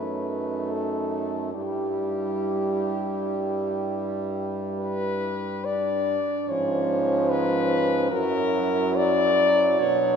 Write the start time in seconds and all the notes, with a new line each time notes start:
Already playing: F#2 A3 D#4 B4
0.72 A4
1.54 G2 G3 E4 G4
4.78 B4
5.65 D4 D5
6.49 G#2 F3 C#4 C#5
7.30 B4
8.11 F#2 F#3 E4 A#4
8.96 D5
9.79 B2 D4 C#5